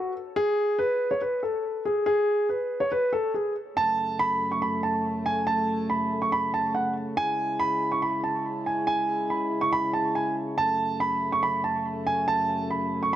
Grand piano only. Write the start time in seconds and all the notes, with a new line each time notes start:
Already playing: F#4
0.36 G#4
0.79 B4
1.11 C#5
1.21 B4
1.43 A4
1.85 G#4
2.06 G#4
2.49 B4
2.80 C#5
2.92 B4
3.13 A4
3.34 G#4
3.77 A5
4.19 B5
4.52 C#6
4.62 B5
4.83 A5
5.26 G#5
5.47 A5
5.90 B5
6.22 C#6
6.32 B5
6.54 A5
6.75 F#5
7.17 G#5
7.59 B5
7.92 C#6
8.02 B5
8.24 A5
8.66 G#5
8.87 G#5
9.30 B5
9.61 C#6
9.73 B5
9.93 A5
10.15 G#5
10.58 A5
11.00 B5
11.32 C#6
11.43 B5
11.64 A5
12.07 G#5
12.28 A5
12.71 B5
13.03 C#6